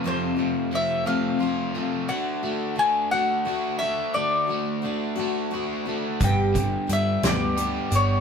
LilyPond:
<<
  \new Staff \with { instrumentName = "Mandolin" } { \time 6/8 \key d \lydian \tempo 4. = 58 c''4 e''8 f''4 r8 | fis''4 gis''8 fis''4 e''8 | d''2~ d''8 r8 | g''4 e''8 d''4 cis''8 | }
  \new Staff \with { instrumentName = "Steel-string acoustic guitar" } { \time 6/8 \key d \lydian <f, c f a c' f'>8 <f a c' f'>8 <f a c' f'>8 <f, c f a c' f'>8 <f a c' f'>8 <f a c' f'>8 | <d a d' fis'>8 <a d' fis'>8 <d a d' fis'>8 <d a d' fis'>8 <d a d' fis'>8 <a d' fis'>8 | <d a d' fis'>8 <a d' fis'>8 <d a d' fis'>8 <d a d' fis'>8 <d a d' fis'>8 <a d' fis'>8 | <g, d g b d' g'>8 <g b d' g'>8 <g b d' g'>8 <g, d g b d' g'>8 <g b d' g'>8 <g b d' g'>8 | }
  \new Staff \with { instrumentName = "Overdriven electric guitar" } { \time 6/8 \key d \lydian <f, f a f'>8 c8 f8 a8 f'8 a8 | d8 a8 d8 a8 fis'8 a8 | d8 a8 d8 a8 fis'8 a8 | g,8 d8 g8 b8 g'8 b8 | }
  \new Staff \with { instrumentName = "Picked electric bass" } { \clef bass \time 6/8 \key d \lydian r2. | r2. | r2. | g,,4 g,8 d,4 g,,8 | }
  \new DrumStaff \with { instrumentName = "Drums" } \drummode { \time 6/8 r4. r4. | r4. r4. | r4. r4. | <hh bd>8 <hh bd>8 hh8 <hh sn>8 hh8 hh8 | }
>>